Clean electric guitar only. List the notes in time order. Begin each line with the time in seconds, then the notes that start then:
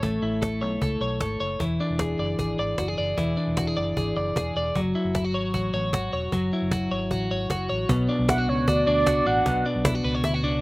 Already playing: E4 A4 C#5
0.03 A3
0.23 E4
0.42 A4
0.61 C#5
0.82 A4
1.01 C#5
1.21 A4
1.40 C#5
1.60 E3
1.80 D4
2.00 G#4
2.19 D5
2.39 G#4
2.59 D5
2.79 F#4
2.88 G#4
2.98 D5
3.18 E3
3.37 D4
3.57 F#4
3.67 G#4
3.77 D5
3.97 G#4
4.17 D5
4.36 G#4
4.57 D5
4.76 F#3
4.95 E4
5.15 E4
5.24 F#4
5.34 C#5
5.54 F#4
5.74 C#5
5.93 F#4
6.13 C#5
6.33 F#3
6.53 E4
6.72 F#4
6.91 C#5
7.11 F#4
7.31 C#5
7.50 F#4
7.69 C#5
7.89 B2
8.09 D4
8.29 E4
8.38 F#4
8.68 F#4
8.87 D4
9.07 F#4
9.26 D4
9.46 B2
9.66 D4
9.85 E4
9.95 F#4
10.04 B4
10.15 C#5
10.25 E4
10.34 F#4
10.44 D4